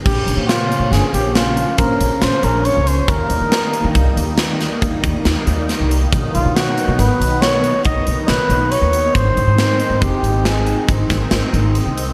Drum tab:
CC |x-------------|--------------|--------------|--------------|
HH |-xxxxxxxxxxxxx|xxxxxxxxxxxxxx|xxxxxxxxxxxxxx|xxxxxxxxxxxxxx|
SD |--o-o-o---o---|--o---oo--o-o-|--o---o---o---|--o---o--oo---|
BD |o-------o-----|o---o---oo----|o-------o-----|o---o---oo----|